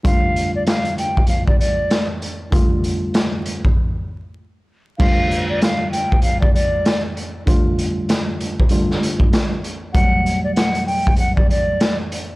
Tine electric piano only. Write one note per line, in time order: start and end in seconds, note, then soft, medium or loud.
0.04 2.06 G2 medium
0.04 2.07 D3 medium
0.04 2.07 G3 medium
0.04 2.07 A3 medium
0.04 2.07 F4 loud
2.51 3.67 G2 medium
2.51 3.68 D3 medium
2.51 3.68 G3 medium
2.51 3.68 A3 medium
2.51 3.68 F4 loud
4.99 7.01 G2 medium
4.99 7.01 D3 medium
4.99 7.02 G3 medium
4.99 7.02 A3 medium
4.99 7.02 F4 loud
7.46 8.62 G2 medium
7.46 8.63 D3 medium
7.46 8.63 G3 medium
7.46 8.63 A3 medium
7.46 8.63 F4 loud
8.70 9.57 G2 medium
8.70 9.58 D3 medium
8.70 9.58 G3 medium
8.70 9.58 A3 medium
8.70 9.58 F4 loud
9.94 11.96 B2 medium
9.94 11.97 F#3 loud
9.94 11.97 G3 medium
9.94 11.97 A3 medium